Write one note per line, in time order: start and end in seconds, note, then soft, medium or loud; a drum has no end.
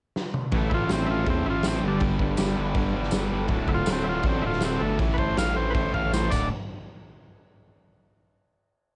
0.16 snare medium
0.34 mid tom medium
0.51 0.69 A1 loud
0.51 0.72 A2 loud
0.51 0.72 E3 medium
0.51 0.73 A3 loud
0.51 1.79 C#4 medium
0.51 1.81 E4 medium
0.51 kick loud
0.51 crash medium
0.56 1.82 A4 medium
0.70 0.88 A1 medium
0.70 0.89 A2 medium
0.70 0.90 E3 medium
0.70 0.72 E4 medium
0.70 kick medium
0.74 0.91 A3 medium
0.74 0.91 F4 loud
0.89 1.07 A1 loud
0.89 1.08 A2 medium
0.89 1.09 E3 medium
0.89 1.10 A3 loud
0.89 1.09 C4 medium
0.89 snare loud
0.89 tambourine medium
0.89 crash medium
1.07 1.25 A1 loud
1.07 1.27 A2 medium
1.07 1.28 E3 medium
1.07 1.09 E4 medium
1.07 1.28 F4 loud
1.11 1.29 A3 medium
1.26 1.43 E2 medium
1.26 1.45 A2 medium
1.26 1.46 E3 loud
1.26 1.47 A3 medium
1.26 1.47 C4 medium
1.26 kick loud
1.26 crash medium
1.46 1.62 A1 medium
1.46 1.63 A2 medium
1.46 1.65 E3 medium
1.46 1.65 A3 medium
1.46 1.48 E4 medium
1.50 1.66 F4 medium
1.63 1.80 A1 medium
1.63 1.81 A2 medium
1.63 1.82 E3 medium
1.63 1.83 A3 medium
1.63 snare loud
1.63 tambourine loud
1.63 crash medium
1.68 1.84 C4 medium
1.80 1.99 G1 medium
1.80 2.00 G2 loud
1.80 2.00 D3 loud
1.80 2.01 G3 loud
1.80 3.45 D4 medium
1.80 3.46 G4 medium
1.80 3.47 B4 medium
1.88 2.03 D3 medium
1.88 2.03 G3 medium
2.00 2.17 G1 loud
2.00 2.19 G2 medium
2.00 2.20 D3 loud
2.00 2.20 G3 medium
2.00 kick loud
2.00 crash medium
2.19 2.36 G1 medium
2.19 2.37 G2 medium
2.19 2.38 D3 medium
2.19 2.39 G3 medium
2.19 kick medium
2.37 2.55 G1 loud
2.37 2.55 G2 medium
2.37 2.56 D3 medium
2.37 2.57 G3 loud
2.37 snare loud
2.37 tambourine loud
2.37 crash medium
2.56 2.74 G1 loud
2.56 2.75 G2 medium
2.56 2.75 D3 medium
2.56 2.76 G3 medium
2.75 2.92 G1 loud
2.75 2.93 G2 medium
2.75 2.94 D3 medium
2.75 2.95 G3 medium
2.75 kick loud
2.75 crash medium
2.93 3.10 G1 medium
2.93 3.10 G2 medium
2.93 3.11 D3 medium
2.93 3.12 G3 medium
3.03 snare soft
3.11 3.29 G1 medium
3.11 3.29 G2 medium
3.11 3.30 D3 medium
3.11 3.32 G3 loud
3.11 snare loud
3.11 tambourine loud
3.11 crash medium
3.30 3.48 G1 medium
3.30 3.48 G2 loud
3.30 3.49 D3 loud
3.30 3.49 G3 loud
3.48 3.65 D1 medium
3.48 3.66 D2 loud
3.48 3.68 A2 medium
3.48 3.68 D3 loud
3.48 4.95 D4 medium
3.48 4.96 F#4 medium
3.48 4.97 A4 medium
3.48 kick loud
3.48 crash medium
3.67 3.85 D1 loud
3.67 3.85 D2 medium
3.67 3.86 A2 medium
3.67 3.86 D3 medium
3.67 3.70 E4 medium
3.67 kick medium
3.74 3.89 F4 loud
3.86 4.04 D1 loud
3.86 4.05 D2 loud
3.86 4.05 A2 medium
3.86 4.06 D3 loud
3.86 snare loud
3.86 tambourine medium
3.86 crash medium
3.92 4.08 C4 medium
4.04 4.22 D1 loud
4.04 4.23 D2 medium
4.04 4.24 A2 medium
4.04 4.25 D3 loud
4.04 4.06 E4 medium
4.09 4.26 F4 loud
4.23 4.40 A1 loud
4.23 4.42 D2 loud
4.23 4.43 A2 loud
4.23 4.44 D3 loud
4.23 kick loud
4.23 crash medium
4.29 4.45 C4 loud
4.42 4.59 D1 medium
4.42 4.61 D2 medium
4.42 4.62 A2 medium
4.42 4.62 D3 medium
4.42 4.44 E4 medium
4.47 4.63 F4 loud
4.52 snare soft
4.60 4.78 D1 loud
4.60 4.80 D2 medium
4.60 4.81 A2 medium
4.60 4.81 D3 loud
4.60 snare loud
4.60 tambourine medium
4.60 crash medium
4.65 4.82 C4 loud
4.80 4.97 G1 medium
4.80 4.98 D2 loud
4.80 4.99 A2 loud
4.80 4.99 D3 medium
4.80 4.99 A3 loud
4.96 5.16 A1 medium
4.96 6.28 C#4 medium
4.96 6.29 E4 medium
4.96 6.29 A4 medium
4.96 kick loud
4.96 crash medium
5.01 5.18 A2 loud
5.01 5.19 E3 loud
5.01 5.20 A3 loud
5.14 5.35 A1 loud
5.14 5.16 B4 medium
5.18 5.37 A2 medium
5.18 5.38 E3 loud
5.18 5.39 A3 loud
5.18 5.37 C5 loud
5.18 kick medium
5.37 5.54 A1 loud
5.37 5.56 A2 medium
5.37 5.56 E3 loud
5.37 5.57 A3 loud
5.37 5.56 F5 loud
5.37 snare loud
5.37 tambourine loud
5.37 crash medium
5.56 5.73 A1 loud
5.56 5.73 A2 medium
5.56 5.75 E3 medium
5.56 5.75 A3 medium
5.56 5.73 C5 medium
5.70 5.91 A1 loud
5.70 5.93 A2 medium
5.70 5.73 B4 medium
5.70 5.93 C5 loud
5.75 5.94 E3 loud
5.75 5.95 A3 loud
5.75 kick loud
5.75 crash medium
5.93 6.11 A1 medium
5.93 6.11 A2 medium
5.93 6.12 E3 medium
5.93 6.13 A3 loud
5.93 6.13 F5 medium
5.93 kick medium
6.12 6.30 A1 medium
6.12 6.30 A2 medium
6.12 6.31 E3 medium
6.12 6.32 A3 loud
6.12 6.32 C5 medium
6.12 snare medium
6.12 tambourine loud
6.30 6.50 D1 medium
6.30 6.47 D2 loud
6.30 6.47 A2 loud
6.30 6.47 D3 loud
6.30 6.50 D4 medium
6.30 6.50 F#4 medium
6.30 6.50 A4 medium
6.30 6.49 D5 loud
6.30 kick loud
6.30 crash medium
6.30 tambourine medium